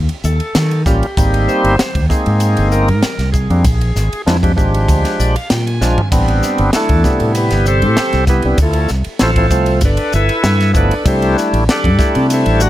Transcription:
0.09 ride
0.24 D#2 A4, hi-hat pedal
0.40 ride
0.55 D#3, snare, hi-hat pedal, ride
0.71 ride
0.86 A1 G3 A#3 C#4 F4 G4, kick, snare, hi-hat pedal
1.03 ride
1.17 G#1 G3 A#3 C4 D#4, kick, hi-hat pedal, ride
1.34 ride
1.48 C5, hi-hat pedal
1.64 G1, ride
1.79 snare, hi-hat pedal, ride
1.95 D#2, kick, ride
2.09 G#3 A#3 C4 D#4 G#4, kick, hi-hat pedal
2.26 G#2, ride
2.40 hi-hat pedal, ride
2.57 G1, ride
2.71 A#4, hi-hat pedal
2.88 G#2, ride
3.03 muted fretless electric bass stroke, snare, hi-hat pedal, ride
3.18 C2, snare, ride
3.32 G#4, kick, hi-hat pedal
3.50 F2 G3 A#3 C4 D4, ride
3.64 A#1, kick, hi-hat pedal, ride
3.81 ride
3.95 G#1, snare, hi-hat pedal
4.13 ride
4.26 F2 F3 G#3 D4 E4, snare, hi-hat pedal, ride
4.43 F3 G#3 D4 G4, kick, ride
4.56 G#1 F3 G#3 D4 G4, kick, hi-hat pedal
4.74 ride
4.88 D2, kick, hi-hat pedal, ride
5.05 snare, ride
5.19 A#1 D5, hi-hat pedal
5.36 F5, ride
5.50 A#2 G5, snare, hi-hat pedal, ride
5.67 G#5, ride
5.81 A#1 F3 G#3 D4 F4, snare, hi-hat pedal
5.98 floor tom
6.12 A1 G3 B3 C4 D4, kick, hi-hat pedal, ride, crash
6.28 ride
6.43 snare, hi-hat pedal
6.58 G1, ride
6.73 A3 D4 E4 A4, snare, hi-hat pedal, ride
6.89 E2, kick, ride
7.04 C3 G3 B3 E4, kick, snare, hi-hat pedal
7.20 A2, ride
7.35 B3 E4 G4 B4, hi-hat pedal, ride
7.51 G1, snare, ride
7.66 C4 G4 A4 C5, hi-hat pedal
7.82 A2, ride
7.97 muted fretless electric bass stroke, snare, hi-hat pedal, ride
8.13 C2, snare, ride
8.27 B3 E4 G4 B4, kick, snare, hi-hat pedal
8.42 C2 G3 B3 C4 D4, ride
8.58 D2, kick, hi-hat pedal, ride
8.62 A3 E4 F4 A4
8.73 ride
8.88 C2, snare, hi-hat pedal
9.04 muted fretless electric bass stroke, ride
9.19 A1 F3 A3 C4 E4 F4 A4 C5, snare, hi-hat pedal, ride
9.36 F3 A3 C4 E4, kick, ride
9.50 C2 F3 A3 C4 F4, kick, hi-hat pedal
9.66 ride
9.81 G1 D4, kick, hi-hat pedal, ride
9.85 A4 B4 D5
9.97 ride
10.12 G1 E4 A4 B4 E5, hi-hat pedal
10.29 ride
10.43 G2, snare, hi-hat pedal, ride
10.60 snare, ride
10.73 G1 F3 A3 B3 D4 E4 B4 D5, kick, hi-hat pedal
10.77 A4
10.91 ride
11.05 C2 G3 A3 C4 D4 E4 G4 A4 C5, kick, hi-hat pedal, ride
11.22 ride
11.38 snare, hi-hat pedal
11.53 A1, ride
11.67 D4 G4 A4 D5, muted fretless electric bass stroke, snare, hi-hat pedal, ride
11.84 G2, kick, ride
11.98 G3 A3 D4 E4, kick, snare, hi-hat pedal
12.15 C3, ride
12.30 E4 A4 C5 E5, hi-hat pedal, ride
12.46 A1, ride
12.60 F#4 F#5, hi-hat pedal

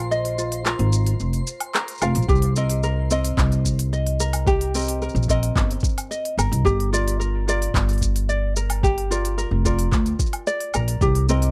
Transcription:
Already playing: A#1 F4 A#4 C5 D#5 F5 C6
0.11 D#5, shaker
0.25 open hi-hat
0.38 F4, shaker
0.52 open hi-hat, shaker
0.65 F4 A#4 F5, clap, shaker
0.79 G#1, open hi-hat
0.93 shaker
1.06 open hi-hat, shaker
1.20 F1, shaker
1.33 open hi-hat, shaker
1.47 shaker
1.60 open hi-hat, low woodblock
1.74 A#4, clap, shaker
1.88 open hi-hat, shaker
1.91 shaker
1.95 shaker
1.98 F4, low woodblock, shaker
2.02 F1 A#4 F5, shaker
2.15 A#1, open hi-hat, shaker
2.22 shaker
2.28 C2 G4, kick, shaker
2.35 shaker
2.42 open hi-hat
2.56 C4 A#4 D#5, shaker
2.70 open hi-hat, shaker
2.83 A#4, shaker
3.10 C4 A#4 D#5, shaker
3.25 open hi-hat, shaker
3.37 C2, kick, clap, shaker
3.52 open hi-hat, shaker
3.65 kick, shaker
3.79 open hi-hat, shaker
3.93 D#5, shaker
4.07 open hi-hat
4.20 A#4, shaker
4.33 open hi-hat, low woodblock, shaker
4.47 G4, kick, shaker
4.61 open hi-hat
4.75 C4 A#4 D#5, shaker
4.77 shaker
4.79 shaker
4.81 shaker
4.84 shaker
4.86 open hi-hat, shaker
4.89 shaker
5.02 A#4, shaker
5.09 shaker
5.15 A#1, shaker
5.23 shaker
5.28 C4 A#4 D#5, kick, shaker
5.43 open hi-hat, shaker
5.56 G1, kick, clap, shaker
5.71 open hi-hat, shaker
5.80 kick, shaker
5.84 shaker
5.98 open hi-hat, low woodblock, shaker
6.11 D#5, shaker
6.25 open hi-hat
6.37 G1 A#4, low woodblock, shaker
6.51 C2, open hi-hat, shaker
6.65 G1 G4, kick, shaker
6.80 open hi-hat
6.93 F4 A#4 D5, shaker
7.08 open hi-hat, shaker
7.20 A#4, shaker
7.48 F4 A#4 D5, shaker
7.62 open hi-hat, shaker
7.74 G1, kick, clap, shaker
7.89 open hi-hat, shaker
7.93 open hi-hat
7.98 kick, open hi-hat
8.02 shaker
8.16 open hi-hat, shaker
8.29 D5, shaker
8.56 A#4, shaker
8.70 open hi-hat, low woodblock, shaker
8.83 G4, kick, shaker
8.98 open hi-hat
9.11 F4 A#4 D5, shaker
9.25 open hi-hat, shaker
9.38 A#4, shaker
9.51 F1
9.65 F4 A#4 D5, kick, shaker
9.79 open hi-hat, shaker
9.92 D2, kick, clap, shaker
10.06 open hi-hat, shaker
10.19 kick, shaker
10.26 shaker
10.33 open hi-hat, low woodblock
10.47 D5, shaker
10.60 open hi-hat
10.74 A#1 A#4, low woodblock, shaker
10.88 open hi-hat, shaker
11.01 C2 G4, kick, shaker
11.15 open hi-hat
11.29 C4 A#4 D#5, shaker
11.42 open hi-hat, shaker

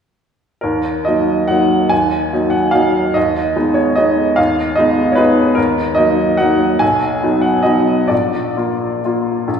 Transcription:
0.61 D#2 A#4
1.05 F#3 A#3 D#4 D#5
1.48 F#3 A#3 D#4 F#5
1.89 D#2 G#5
2.33 F#3 A#3 D#4
2.50 F#5
2.71 F#3 A#3 D#4 F5
3.14 D#2 D#5
3.56 G#3 B3 D#4
3.74 C#5
3.96 G#3 B3 D#4 D#5
4.36 D#2 F5
4.76 G#3 B3 D#4 D#5
5.12 B4 C#5
5.18 G#3 B3 D#4
5.55 D#2 A#4
5.95 F#3 A#3 D#4 D#5
6.37 F#3 A#3 D#4 F#5
6.79 B1 G#5
7.23 F#3 B3 D#4
7.41 F#5
7.63 F#3 B3 D#4 D#5
8.08 A#1 D5
8.57 A#3 F4
9.05 A#3 F4
9.48 A#1

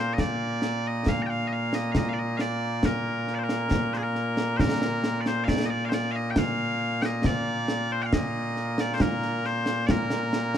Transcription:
Already playing: A#2 A#3 C5
0.13 D#5
0.18 D5, concert bass drum, snare
0.62 snare
0.87 D#5
1.06 F5, concert bass drum, snare
1.22 G5 A#5
1.30 F5
1.48 D#5
1.53 F5
1.73 D#5, snare
1.92 F5, concert bass drum, snare
1.97 D#5
2.09 F5
2.14 D5
2.19 D#5
2.37 D5 F5, snare
2.83 A#4, concert bass drum, snare
3.27 snare
3.34 D5
3.38 C5
3.44 A#4
3.49 snare
3.71 concert bass drum, snare
3.93 G#4 C5, snare
4.03 A#4
4.15 snare
4.37 snare
4.57 A#4 C5, concert bass drum, snare
4.82 snare
5.04 snare
5.21 D5
5.26 C5, snare
5.44 F5, concert bass drum, snare
5.48 D5
5.66 D#5
5.70 D5
5.85 C5 F5
5.92 D5, snare
6.12 F5
6.16 D#5
6.31 G5
6.36 F5, concert bass drum, snare
7.02 D#5 G5, snare
7.24 D5, concert bass drum, snare
7.68 snare
7.92 C5
8.02 F5 G5
8.13 D#5, concert bass drum, snare
8.57 snare
8.78 D5, snare
8.94 C5
9.00 A#4, concert bass drum, snare
9.22 snare
9.45 C5, snare
9.66 snare
9.86 A#4 D5, concert bass drum, snare
10.10 snare
10.33 snare
10.55 snare

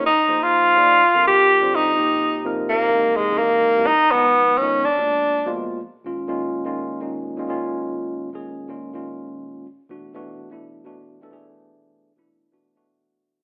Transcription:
0.06 D#4
0.28 F3 A#3 D#4 G#4 C5
0.43 F4
0.76 F3 A#3 D#4 G#4 D5
1.14 D3 G3 C4 F4 A#4
1.28 G4
1.61 D3 G3 C4 F4 C5
1.75 D#4
1.96 C3 F3 A#3 D#4 G4
2.45 C3 F3 A#3 D#4 A#4
2.69 A#3
2.93 C3 E3 G#3 A#3 D#4
3.16 G#3
3.30 C3 E3 G#3 A#3 D#4
3.38 A#3
3.77 C3 E3 G#3 A#3 E4
3.87 D#4
4.11 D#3 F3 G#3 B3 D#4
4.58 D#3 F3 G#3 B3 C#4
4.62 D#4
4.85 D4
4.98 B2 F3 G#3 A#3 D4
5.45 B2 F3 G#3 A#3 F4
6.04 A#2 D#3 G#3 C#4 F4
6.28 A#2 D#3 G#3 C#4 F4
6.65 A#2 D#3 G#3 C#4 F4
7.00 A#2 D#3 G#3 C#4 D#4
7.37 A#2 D#3 G#3 C#4 F4
7.48 A#2 D#3 G#3 C#4 F4
8.33 A#2 D#3 G#3 C#4 G#4
8.68 A#2 D#3 G#3 C#4 F4
8.93 A#2 D#3 G#3 C#4 F4
9.89 B2 E3 A3 D4 F#4
10.13 B2 E3 A3 D4 F#4
10.51 B2 E3 A3 D4 E4
10.84 B2 E3 A3 D4 F#4
11.21 B2 E3 A3 D4 A4
11.31 B2 E3 A3 D4 G#4
12.17 B2 E3 A3 D4 E4
12.52 B2 E3 A3 D4 F#4
12.75 B2 E3 A3 D4 F#4

